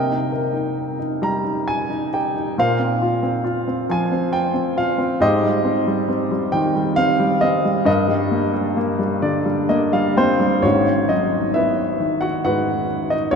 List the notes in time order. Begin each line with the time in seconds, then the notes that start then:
Already playing: C3 A#4 D#5 G5
0.08 D#4
0.32 A#4
0.53 D#4
0.99 D#4
1.22 G3 A#5
1.44 D#4
1.68 G#5
1.90 D#4
2.13 G4 G5
2.36 D#4
2.58 A#2 A#4 C5 F5
2.79 C4
3.02 F4
3.23 C4
3.44 F4
3.68 C4
3.89 F3 G#5
4.12 C4
4.32 F4 G5
4.54 C4
4.77 F4 F5
4.98 C4
5.20 G#2 G4 C5 D#5
5.43 G3
5.65 C4
5.87 G3
6.08 C4
6.31 G3
6.52 D#3 G5
6.75 G3
6.96 C4 F5
7.20 G3
7.41 C4 D#5
7.65 G3
7.85 G2 A#4 D#5
8.08 G3
8.31 A#3
8.53 G3
8.77 A#3
8.99 G3
9.22 D3 D5
9.45 G3
9.69 A#3 D#5
9.93 G3 F5
10.17 A#3 C4 C5 G5
10.40 G3
10.62 G#1 G#2 C#4 F#4 C#5
11.09 F#3 D#4 D#5
11.54 B3 E4 B4 E5
12.00 D#3
12.21 F#4 F#5
12.44 G#2 F#4 B4 F#5
13.10 D#4 D#5
13.31 A#1 A#2 C#4 F#4 C#5